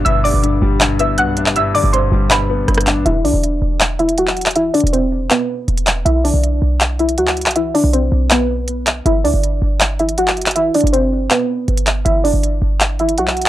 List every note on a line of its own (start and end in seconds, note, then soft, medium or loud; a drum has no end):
0.00 0.06 G2 medium
0.00 3.02 B2 medium
0.00 0.24 D3 medium
0.00 3.02 D3 medium
0.00 0.62 G3 medium
0.00 0.43 B3 medium
0.00 1.37 D4 medium
0.00 3.02 G4 medium
0.05 0.33 G1 loud
0.05 0.42 G2 medium
0.05 0.20 E5 medium
0.05 0.20 E6 loud
0.05 closed hi-hat medium
0.24 1.18 D3 medium
0.24 0.96 D5 medium
0.24 0.95 D6 medium
0.24 open hi-hat medium
0.34 0.61 G1 loud
0.43 0.79 G2 medium
0.43 closed hi-hat medium
0.62 1.20 G1 loud
0.62 1.56 G3 medium
0.81 1.17 G2 medium
0.81 clap loud
0.81 closed hi-hat medium
0.99 1.93 B3 medium
0.99 1.15 E5 medium
0.99 1.14 E6 medium
0.99 closed hi-hat medium
1.18 1.48 B1 loud
1.18 1.54 G2 medium
1.18 1.54 F#5 medium
1.18 1.53 F#6 medium
1.18 closed hi-hat medium
1.37 2.31 D4 medium
1.37 closed hi-hat medium
1.46 1.73 G1 loud
1.46 clap loud
1.56 1.92 G2 loud
1.56 1.71 E5 medium
1.56 1.71 E6 medium
1.56 closed hi-hat medium
1.75 2.68 D3 medium
1.75 1.90 D5 medium
1.75 1.89 D6 medium
1.75 open hi-hat medium
1.84 2.11 G1 loud
1.93 2.29 G2 medium
1.93 2.29 C5 medium
1.93 2.28 C6 medium
1.93 closed hi-hat medium
2.12 2.66 G1 loud
2.12 3.06 G3 medium
2.31 2.67 G2 medium
2.31 3.02 B4 medium
2.31 3.02 B5 medium
2.31 clap loud
2.31 closed hi-hat medium
2.50 3.06 B3 medium
2.68 2.98 G1 loud
2.68 3.06 G2 medium
2.68 cross-stick medium
2.68 closed hi-hat soft
2.74 cross-stick loud
2.74 closed hi-hat medium
2.81 closed hi-hat medium
2.87 3.06 D4 medium
2.87 clap loud
2.87 closed hi-hat medium
2.96 3.05 A1 medium
3.06 3.26 E1 loud
3.06 3.21 E4 medium
3.06 3.20 E5 loud
3.06 closed hi-hat medium
3.24 3.33 B1 loud
3.24 3.96 D4 medium
3.24 3.95 D5 medium
3.24 open hi-hat medium
3.34 3.61 E1 loud
3.43 closed hi-hat medium
3.62 4.70 E1 loud
3.81 clap loud
3.81 closed hi-hat medium
3.99 4.14 E4 medium
3.99 4.14 E5 medium
3.99 closed hi-hat soft
4.09 closed hi-hat medium
4.18 4.54 F#4 medium
4.18 4.53 F#5 medium
4.18 closed hi-hat medium
4.27 clap medium
4.37 closed hi-hat soft
4.41 closed hi-hat medium
4.46 clap loud
4.46 closed hi-hat medium
4.51 closed hi-hat medium
4.56 4.71 E4 medium
4.56 4.70 E5 medium
4.56 closed hi-hat medium
4.74 4.89 D4 medium
4.74 4.89 D5 medium
4.74 closed hi-hat soft
4.74 open hi-hat medium
4.80 5.29 E1 loud
4.80 closed hi-hat medium
4.87 closed hi-hat medium
4.93 5.29 C4 medium
4.93 5.28 C5 medium
4.93 closed hi-hat medium
5.31 6.02 B3 medium
5.31 6.02 B4 medium
5.31 clap loud
5.31 closed hi-hat medium
5.68 6.04 E1 loud
5.68 closed hi-hat soft
5.78 closed hi-hat medium
5.87 clap loud
5.87 closed hi-hat medium
6.05 6.33 B1 loud
6.05 6.21 E4 medium
6.05 6.20 E5 loud
6.05 closed hi-hat medium
6.24 6.96 D4 medium
6.24 6.95 D5 medium
6.24 open hi-hat medium
6.34 6.61 B1 loud
6.44 closed hi-hat medium
6.62 7.20 B1 loud
6.81 clap loud
6.81 closed hi-hat medium
6.99 7.14 E4 medium
6.99 7.14 E5 medium
6.99 closed hi-hat soft
7.09 closed hi-hat medium
7.18 7.48 D2 loud
7.18 7.54 F#4 medium
7.18 7.53 F#5 medium
7.18 closed hi-hat medium
7.27 clap medium
7.37 closed hi-hat soft
7.41 closed hi-hat medium
7.46 7.73 B1 loud
7.46 clap medium
7.46 closed hi-hat medium
7.51 closed hi-hat medium
7.56 7.71 E4 medium
7.56 7.70 E5 medium
7.56 closed hi-hat medium
7.74 7.89 D4 medium
7.74 7.89 D5 medium
7.74 open hi-hat medium
7.84 8.11 B1 loud
7.93 8.29 C4 medium
7.93 8.28 C5 medium
7.93 closed hi-hat medium
8.12 9.02 B1 loud
8.31 9.02 B3 medium
8.31 9.02 B4 medium
8.31 clap loud
8.31 closed hi-hat medium
8.68 closed hi-hat medium
8.87 clap loud
8.87 closed hi-hat medium
9.06 9.26 G1 loud
9.06 9.21 E4 medium
9.06 9.20 E5 loud
9.06 closed hi-hat medium
9.24 9.33 D2 loud
9.24 9.96 D4 medium
9.24 9.95 D5 medium
9.24 open hi-hat medium
9.34 9.61 G1 loud
9.43 closed hi-hat medium
9.62 10.70 G1 loud
9.81 clap loud
9.81 closed hi-hat medium
9.99 10.15 E4 medium
9.99 10.14 E5 medium
9.99 closed hi-hat soft
10.09 closed hi-hat medium
10.18 10.54 F#4 medium
10.18 10.53 F#5 medium
10.18 closed hi-hat medium
10.28 clap medium
10.37 closed hi-hat soft
10.41 closed hi-hat medium
10.46 clap medium
10.46 closed hi-hat medium
10.51 closed hi-hat medium
10.55 10.71 E4 medium
10.55 10.70 E5 medium
10.55 closed hi-hat medium
10.74 10.89 D4 medium
10.74 10.89 D5 medium
10.74 closed hi-hat soft
10.74 open hi-hat medium
10.81 11.29 G1 loud
10.81 closed hi-hat medium
10.87 closed hi-hat medium
10.93 11.29 C4 medium
10.93 11.28 C5 medium
10.93 closed hi-hat medium
11.31 12.02 B3 medium
11.31 12.02 B4 medium
11.31 clap loud
11.31 closed hi-hat medium
11.68 12.04 G1 loud
11.68 closed hi-hat soft
11.77 closed hi-hat medium
11.87 clap loud
11.87 closed hi-hat medium
12.05 12.33 G1 loud
12.05 12.20 E4 medium
12.05 12.20 E5 loud
12.05 closed hi-hat medium
12.24 12.96 D4 medium
12.24 12.95 D5 medium
12.24 open hi-hat medium
12.34 12.61 G1 loud
12.43 closed hi-hat medium
12.62 13.19 G1 loud
12.81 clap loud
12.81 closed hi-hat medium
12.99 13.15 E4 medium
12.99 13.14 E5 medium
12.99 closed hi-hat soft
13.09 closed hi-hat medium
13.18 13.48 B1 loud
13.18 13.49 F#4 medium
13.18 13.49 F#5 loud
13.18 closed hi-hat medium
13.28 clap medium
13.37 closed hi-hat soft
13.42 closed hi-hat medium